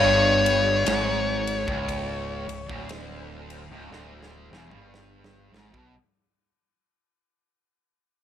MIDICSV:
0, 0, Header, 1, 5, 480
1, 0, Start_track
1, 0, Tempo, 1016605
1, 889, Time_signature, 4, 2, 24, 8
1, 3886, End_track
2, 0, Start_track
2, 0, Title_t, "Lead electric guitar"
2, 0, Program_c, 0, 29
2, 0, Note_on_c, 0, 73, 93
2, 1407, Note_off_c, 0, 73, 0
2, 1407, Note_on_c, 0, 71, 93
2, 2310, Note_off_c, 0, 71, 0
2, 3886, End_track
3, 0, Start_track
3, 0, Title_t, "Distorted electric guitar"
3, 0, Program_c, 1, 30
3, 0, Note_on_c, 1, 43, 100
3, 402, Note_off_c, 1, 43, 0
3, 404, Note_on_c, 1, 44, 107
3, 783, Note_off_c, 1, 44, 0
3, 789, Note_on_c, 1, 37, 97
3, 1165, Note_off_c, 1, 37, 0
3, 1171, Note_on_c, 1, 37, 76
3, 1267, Note_off_c, 1, 37, 0
3, 1268, Note_on_c, 1, 38, 97
3, 1744, Note_off_c, 1, 38, 0
3, 1752, Note_on_c, 1, 37, 96
3, 1843, Note_off_c, 1, 37, 0
3, 1847, Note_on_c, 1, 38, 104
3, 2125, Note_off_c, 1, 38, 0
3, 2133, Note_on_c, 1, 40, 98
3, 2223, Note_off_c, 1, 40, 0
3, 2225, Note_on_c, 1, 43, 100
3, 2603, Note_off_c, 1, 43, 0
3, 2609, Note_on_c, 1, 44, 107
3, 2703, Note_off_c, 1, 44, 0
3, 2706, Note_on_c, 1, 47, 102
3, 2800, Note_off_c, 1, 47, 0
3, 3886, End_track
4, 0, Start_track
4, 0, Title_t, "Fingered electric bass"
4, 0, Program_c, 2, 33
4, 0, Note_on_c, 2, 31, 91
4, 392, Note_off_c, 2, 31, 0
4, 411, Note_on_c, 2, 32, 89
4, 774, Note_off_c, 2, 32, 0
4, 792, Note_on_c, 2, 25, 96
4, 1156, Note_off_c, 2, 25, 0
4, 1174, Note_on_c, 2, 25, 74
4, 1264, Note_off_c, 2, 25, 0
4, 1273, Note_on_c, 2, 26, 91
4, 1734, Note_off_c, 2, 26, 0
4, 1750, Note_on_c, 2, 25, 92
4, 1841, Note_off_c, 2, 25, 0
4, 1849, Note_on_c, 2, 26, 85
4, 2116, Note_off_c, 2, 26, 0
4, 2135, Note_on_c, 2, 28, 89
4, 2225, Note_off_c, 2, 28, 0
4, 2231, Note_on_c, 2, 31, 88
4, 2595, Note_off_c, 2, 31, 0
4, 2611, Note_on_c, 2, 32, 87
4, 2703, Note_off_c, 2, 32, 0
4, 2712, Note_on_c, 2, 35, 103
4, 2802, Note_off_c, 2, 35, 0
4, 3886, End_track
5, 0, Start_track
5, 0, Title_t, "Drums"
5, 218, Note_on_c, 9, 51, 64
5, 265, Note_off_c, 9, 51, 0
5, 408, Note_on_c, 9, 51, 92
5, 414, Note_on_c, 9, 38, 113
5, 455, Note_off_c, 9, 51, 0
5, 462, Note_off_c, 9, 38, 0
5, 696, Note_on_c, 9, 51, 68
5, 743, Note_off_c, 9, 51, 0
5, 792, Note_on_c, 9, 36, 103
5, 840, Note_off_c, 9, 36, 0
5, 890, Note_on_c, 9, 36, 101
5, 891, Note_on_c, 9, 51, 91
5, 937, Note_off_c, 9, 36, 0
5, 938, Note_off_c, 9, 51, 0
5, 1176, Note_on_c, 9, 51, 72
5, 1223, Note_off_c, 9, 51, 0
5, 1272, Note_on_c, 9, 36, 102
5, 1319, Note_off_c, 9, 36, 0
5, 1366, Note_on_c, 9, 51, 89
5, 1372, Note_on_c, 9, 38, 100
5, 1413, Note_off_c, 9, 51, 0
5, 1419, Note_off_c, 9, 38, 0
5, 1653, Note_on_c, 9, 51, 74
5, 1700, Note_off_c, 9, 51, 0
5, 1853, Note_on_c, 9, 38, 61
5, 1900, Note_off_c, 9, 38, 0
5, 1995, Note_on_c, 9, 38, 60
5, 2042, Note_off_c, 9, 38, 0
5, 2139, Note_on_c, 9, 38, 77
5, 2186, Note_off_c, 9, 38, 0
5, 2226, Note_on_c, 9, 47, 68
5, 2273, Note_off_c, 9, 47, 0
5, 2332, Note_on_c, 9, 38, 87
5, 2379, Note_off_c, 9, 38, 0
5, 2476, Note_on_c, 9, 38, 76
5, 2523, Note_off_c, 9, 38, 0
5, 2618, Note_on_c, 9, 38, 98
5, 2665, Note_off_c, 9, 38, 0
5, 2710, Note_on_c, 9, 36, 83
5, 2758, Note_off_c, 9, 36, 0
5, 3886, End_track
0, 0, End_of_file